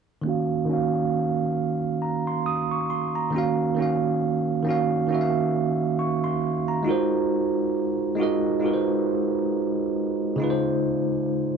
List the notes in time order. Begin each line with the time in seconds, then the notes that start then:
0.22 D#3 A#3 C#4
0.27 F#4 F5
0.65 D#3 A#3 C#4
0.71 F#4 F5
2.02 A#5
2.27 C6
2.46 D#6
2.71 C#6
2.90 C6
3.15 A#5
3.30 D#3 A#3 C#4
3.36 F#4 F5
3.74 D#3 A#3 C#4
3.80 F#4 F5
4.63 D#3 A#3
4.67 C#4 F#4 F5
5.07 D#3 A#3 C#4
5.12 F#4 E5
5.21 F5
5.99 C#6
6.24 C6
6.68 A#5
6.83 G#3 D#4 F4
6.88 F#4 A#4 C5
8.15 G#3 D#4 F4
8.20 F#4 A#4 D#5
8.59 G#3 D#4 F4
8.64 F#4 A#4 B4
8.74 C5
10.36 C#3 G#3 D#4
10.42 F4 B4
10.50 C5